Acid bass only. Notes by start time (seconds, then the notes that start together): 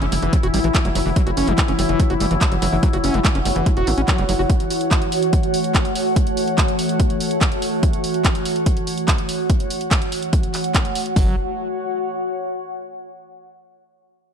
0.02 C#4
0.12 G3
0.23 E3
0.33 G3
0.43 F#4
0.54 G3
0.64 E3
0.75 F#3
0.85 F#3
0.95 F#3
1.06 E3
1.16 F#3
1.27 F#4
1.37 C#4
1.48 F#3
1.58 G3
1.68 C#4
1.79 G3
1.89 E3
2.00 G3
2.10 F#4
2.20 G3
2.31 E3
2.41 F#3
2.52 F#3
2.62 F#3
2.73 E3
2.83 F#3
2.93 F#4
3.04 C#4
3.14 F#3
3.25 G3
3.35 C#4
3.46 G3
3.56 E3
3.66 G3
3.77 F#4
3.87 F#3
3.98 C#4
4.08 F#3
4.18 G3
4.29 F#3
4.39 F#4
11.16 F#3